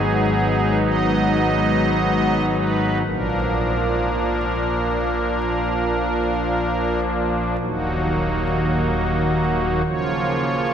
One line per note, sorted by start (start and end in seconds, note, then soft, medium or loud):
0.00 3.03 G#1 medium
0.00 3.03 G#2 medium
0.00 3.03 F#3 medium
0.00 3.03 B3 medium
0.00 3.03 D#4 medium
0.00 0.78 G#4 loud
0.82 2.46 D#5 loud
2.50 2.98 B4 medium
3.07 7.57 A#1 medium
3.07 7.57 A#2 medium
3.07 7.57 F3 soft
3.07 7.57 A#3 soft
3.07 7.57 D4 soft
3.07 7.00 A#4 medium
7.60 9.82 D#1 medium
7.60 9.82 D#2 medium
7.60 9.82 F#3 soft
7.60 9.82 A#3 soft
7.60 9.82 D#4 soft
7.60 9.82 F#4 medium
9.85 10.74 C#3 medium
9.85 10.74 F3 soft
9.85 10.74 A#3 soft
9.85 10.74 F4 soft
9.85 10.74 C#5 medium